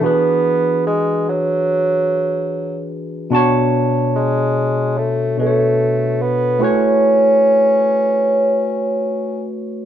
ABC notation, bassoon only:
X:1
M:4/4
L:1/8
Q:"Swing 16ths" 1/4=73
K:Bdor
V:1 name="Bassoon"
B,2 G, F,4 z | z2 G,2 A, A,2 B, | C6- C z |]